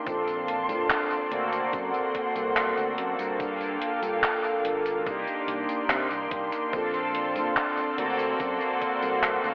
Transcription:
0.00 3.36 A#3 medium
0.05 0.71 A#1 loud
0.05 1.22 C4 medium
0.05 1.23 D4 medium
0.05 1.23 F4 medium
0.05 1.24 A4 medium
0.05 3.37 D5 medium
0.05 1.30 A5 medium
0.05 1.30 C6 medium
0.05 kick loud
0.05 closed hi-hat medium
0.05 tambourine soft
0.28 closed hi-hat soft
0.28 tambourine soft
0.48 closed hi-hat loud
0.69 0.87 A#2 medium
0.69 closed hi-hat medium
0.69 tambourine medium
0.90 clap loud
0.90 closed hi-hat medium
0.90 tambourine soft
1.11 closed hi-hat soft
1.11 tambourine soft
1.30 1.67 D2 medium
1.30 3.31 A#3 medium
1.30 3.31 C4 medium
1.30 3.32 F#4 medium
1.30 3.32 A4 loud
1.30 3.38 F#5 medium
1.30 3.38 C6 medium
1.30 closed hi-hat loud
1.53 closed hi-hat medium
1.53 tambourine medium
1.73 1.91 F#2 loud
1.73 kick loud
1.73 closed hi-hat medium
1.73 tambourine soft
1.94 closed hi-hat soft
1.94 tambourine soft
2.15 kick medium
2.15 closed hi-hat loud
2.36 2.71 C2 medium
2.36 closed hi-hat medium
2.36 tambourine medium
2.57 clap loud
2.57 closed hi-hat medium
2.57 tambourine soft
2.77 2.95 D2 medium
2.77 closed hi-hat soft
2.77 tambourine soft
2.98 3.16 F#2 medium
2.98 closed hi-hat loud
3.19 3.76 G2 medium
3.19 closed hi-hat medium
3.19 tambourine medium
3.38 4.97 A#3 medium
3.38 4.98 D4 medium
3.38 4.98 F4 medium
3.38 5.05 A4 medium
3.38 4.99 A4 medium
3.38 5.05 F5 medium
3.38 5.05 G5 medium
3.38 kick loud
3.38 closed hi-hat medium
3.38 tambourine soft
3.61 closed hi-hat soft
3.61 tambourine soft
3.82 closed hi-hat medium
4.02 4.20 G2 medium
4.02 closed hi-hat medium
4.02 tambourine medium
4.23 clap loud
4.23 closed hi-hat medium
4.23 tambourine soft
4.44 closed hi-hat soft
4.44 tambourine soft
4.65 5.06 G1 medium
4.65 closed hi-hat medium
4.86 closed hi-hat medium
4.86 tambourine medium
5.05 5.24 C2 loud
5.05 6.64 A#3 medium
5.05 7.95 A#3 medium
5.05 6.65 D4 medium
5.05 6.65 D#4 medium
5.05 6.66 G4 medium
5.05 6.72 D5 medium
5.05 7.95 C6 medium
5.05 kick loud
5.05 closed hi-hat medium
5.05 tambourine soft
5.27 closed hi-hat soft
5.27 tambourine soft
5.48 5.66 C2 loud
5.48 closed hi-hat medium
5.69 muted fretless electric bass stroke soft
5.69 closed hi-hat medium
5.69 tambourine medium
5.90 6.07 C3 medium
5.90 clap loud
5.90 closed hi-hat medium
5.90 tambourine soft
6.10 6.28 C2 loud
6.10 closed hi-hat soft
6.10 tambourine soft
6.31 6.49 C2 medium
6.31 kick loud
6.31 closed hi-hat medium
6.52 closed hi-hat medium
6.52 tambourine medium
6.72 7.37 A#1 loud
6.72 7.89 C4 medium
6.72 7.90 D4 medium
6.72 7.90 F4 medium
6.72 7.91 A4 medium
6.72 9.54 D5 medium
6.72 7.97 A5 medium
6.72 kick loud
6.72 closed hi-hat soft
6.72 tambourine soft
6.94 closed hi-hat soft
6.94 tambourine soft
7.15 closed hi-hat medium
7.36 7.53 A#2 medium
7.36 closed hi-hat soft
7.36 tambourine medium
7.56 clap loud
7.56 closed hi-hat soft
7.56 tambourine soft
7.77 closed hi-hat soft
7.77 tambourine soft
7.97 8.33 D2 medium
7.97 9.54 A#3 medium
7.97 9.54 C4 medium
7.97 9.54 F#4 medium
7.97 9.54 A4 loud
7.97 9.54 F#5 medium
7.97 9.54 C6 medium
7.97 closed hi-hat medium
8.19 closed hi-hat soft
8.19 tambourine medium
8.40 8.57 F#2 loud
8.40 kick loud
8.40 closed hi-hat medium
8.40 tambourine soft
8.61 closed hi-hat soft
8.61 tambourine soft
8.81 kick medium
8.81 closed hi-hat medium
9.02 9.38 C2 medium
9.02 closed hi-hat soft
9.02 tambourine medium
9.23 clap loud
9.23 closed hi-hat medium
9.23 tambourine soft
9.44 9.54 D2 medium
9.44 closed hi-hat soft
9.44 tambourine soft

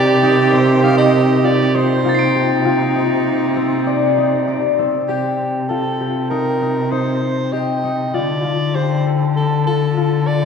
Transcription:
0.00 2.04 C3 medium
0.00 2.01 D#3 medium
0.00 0.52 C4 medium
0.00 2.01 C4 medium
0.00 0.29 D4 medium
0.00 2.01 D#4 medium
0.00 0.61 F4 medium
0.00 2.04 G4 loud
0.00 2.27 G4 medium
0.00 0.54 D5 loud
0.23 0.83 D#4 medium
0.52 3.53 C4 medium
0.52 0.85 C5 medium
0.83 1.74 D#4 medium
0.83 0.97 F5 medium
0.98 1.46 D#5 medium
1.44 2.04 F4 medium
1.44 1.77 D5 medium
1.75 2.95 D#4 medium
1.75 2.97 C5 medium
2.03 5.05 C3 medium
2.03 5.06 C3 medium
2.03 5.06 A#3 medium
2.03 4.78 D#4 medium
2.03 5.06 D#4 medium
2.03 2.65 F4 medium
2.09 2.76 A6 soft
2.15 2.79 C7 soft
2.19 2.81 D7 soft
2.35 4.71 G4 medium
2.65 5.18 F4 medium
2.95 3.93 D#4 medium
3.56 4.78 C4 medium
3.87 4.24 D5 medium
4.18 4.53 D#4 medium
4.47 6.37 D5 medium
4.79 7.79 C4 medium
5.08 8.15 C3 medium
5.08 5.66 G4 medium
5.08 6.00 G4 medium
5.69 8.14 F4 medium
5.69 6.26 A4 medium
6.01 7.52 G4 medium
6.30 6.61 D#4 medium
6.30 6.93 A#4 medium
6.62 6.91 D#4 medium
6.92 7.83 D#4 medium
6.92 7.54 C5 medium
7.53 8.75 G4 medium
7.53 8.16 D#5 medium
7.84 10.45 D#4 medium
8.14 10.45 D3 medium
8.14 8.44 F4 medium
8.14 8.77 D5 medium
8.44 9.66 F4 medium
8.75 10.45 G4 medium
8.75 9.09 C5 medium
9.06 10.27 A4 medium
9.36 9.64 A4 medium
9.67 9.97 F4 medium
9.67 10.29 A4 medium
9.97 10.45 F4 medium
10.27 10.45 A4 medium
10.27 10.45 D5 medium

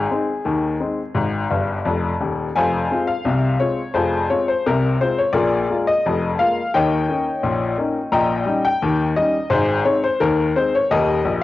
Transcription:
0.00 1.72 G#4 medium
0.11 0.30 G#3 soft
0.11 0.30 C4 soft
0.11 0.30 D#4 soft
0.45 0.75 D#2 medium
0.45 0.75 D#3 medium
0.80 0.99 G#3 soft
0.80 1.00 C4 soft
0.80 1.00 D#4 soft
1.14 1.45 G#1 medium
1.14 1.45 G#2 medium
1.50 1.77 G1 medium
1.50 1.77 G2 medium
1.85 2.12 F1 medium
1.85 2.12 F2 medium
2.20 2.47 D#1 medium
2.20 2.47 D#2 medium
2.56 2.85 F1 medium
2.56 2.86 F2 medium
2.56 3.05 C5 medium
2.56 3.05 F5 medium
2.56 2.98 G#5 medium
2.91 3.10 G#3 soft
2.91 3.10 C4 soft
2.91 3.11 F4 medium
3.07 3.57 F5 medium
3.25 3.55 C2 medium
3.25 3.55 C3 medium
3.60 3.79 G#3 soft
3.60 3.80 C4 soft
3.60 3.80 F4 soft
3.60 3.93 C#5 medium
3.94 4.24 F1 medium
3.94 4.24 F2 medium
3.94 4.28 F4 medium
3.94 4.27 G#4 medium
3.94 4.28 C5 medium
4.30 4.49 G#3 soft
4.30 4.50 C4 soft
4.30 4.50 F4 soft
4.30 4.47 C#5 medium
4.48 4.65 C5 medium
4.66 4.95 C2 medium
4.66 4.95 C3 medium
4.66 4.94 A#4 medium
5.01 5.20 G#3 soft
5.01 5.21 C4 soft
5.01 5.21 F4 soft
5.01 5.18 C5 medium
5.18 5.35 C#5 medium
5.33 5.63 A#1 medium
5.33 5.64 A#2 medium
5.33 5.83 G#4 medium
5.33 5.83 A#4 medium
5.33 5.75 D5 medium
5.70 5.89 G#3 soft
5.70 5.89 A#3 soft
5.70 5.90 F4 medium
5.87 6.29 D#5 medium
6.06 6.35 F1 medium
6.06 6.35 F2 medium
6.39 6.58 G#3 soft
6.39 6.59 A#3 soft
6.39 6.59 F4 medium
6.39 6.72 F5 medium
6.74 7.04 D#2 medium
6.74 7.04 D#3 medium
6.74 8.10 C#5 medium
6.74 8.10 D#5 medium
6.74 8.09 G5 medium
7.09 7.28 A#3 soft
7.09 7.28 C#4 soft
7.09 7.29 D#4 soft
7.43 7.73 A#1 medium
7.43 7.73 A#2 medium
7.78 7.97 A#3 soft
7.78 7.97 C#4 soft
7.78 7.98 D#4 soft
8.12 8.42 A#1 medium
8.12 8.42 A#2 medium
8.12 8.61 D#5 medium
8.12 8.61 G5 medium
8.12 8.54 A#5 medium
8.46 8.65 G3 soft
8.46 8.66 C#4 soft
8.46 8.66 D#4 medium
8.65 9.06 G5 medium
8.82 9.12 D#2 medium
8.82 9.12 D#3 medium
9.16 9.36 G3 soft
9.16 9.36 C#4 soft
9.16 9.37 D#4 medium
9.16 9.50 D#5 medium
9.50 9.80 G#1 medium
9.50 9.80 G#2 medium
9.50 9.84 D#4 medium
9.50 9.84 G#4 medium
9.50 9.78 C5 medium
9.85 10.04 G#3 soft
9.85 10.05 C4 medium
9.85 10.05 D#4 soft
9.85 10.03 C#5 medium
10.04 10.21 C5 medium
10.20 10.50 D#2 medium
10.20 10.50 D#3 medium
10.20 10.54 A#4 medium
10.56 10.75 G#3 soft
10.56 10.76 C4 soft
10.56 10.76 D#4 medium
10.56 10.74 C5 medium
10.75 10.92 C#5 medium
10.91 11.19 D#1 medium
10.91 11.19 D#2 medium
10.91 11.40 G4 medium
10.91 11.40 A#4 medium
10.91 11.33 D#5 medium
11.25 11.43 A#1 medium

